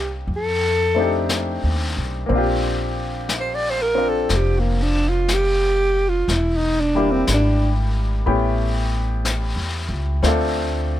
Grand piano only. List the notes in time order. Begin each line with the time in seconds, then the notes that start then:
Already playing: A#3 C4 D4 D#4 G4
0.95 A3 C4 D4 D#4
1.00 G4
2.26 A#3 C4
2.32 D4 F4
2.38 G4
3.95 C4 D4 F4
6.95 G3 A#3 D4 E4 G4
8.26 A3 B3 C#4 E4 G4
10.23 A3 C4 D4 F4
10.27 A4